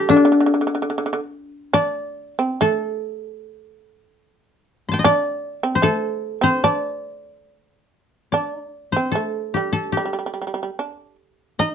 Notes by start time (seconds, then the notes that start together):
Already playing: G4 A4
0.09 D3 D4
0.16 D3
0.25 D3
0.32 D3
0.41 D3
0.46 D3
0.54 D3
0.61 D3
0.67 D3
0.75 D3
0.82 D3
0.90 D3
0.98 D3
1.06 D3
1.13 D3
1.73 D4 D5
2.39 C4
2.61 A3 A4
4.89 A5 C6
4.94 G5
4.99 D#5
5.04 D4 D5
5.63 C4
5.75 C5
5.82 A3 A4
6.41 C4 C5
6.64 D4 D5
8.32 D4 D5
8.92 C5
8.97 C4
9.12 A3 A4
9.54 G3 G4
9.73 A4
9.92 G4
9.97 G3
10.06 G3
10.13 G3
10.19 G3
10.26 G3
10.34 G3
10.42 G3
10.47 G3
10.54 G3
10.63 G3
10.79 D4
11.59 D#4 D#5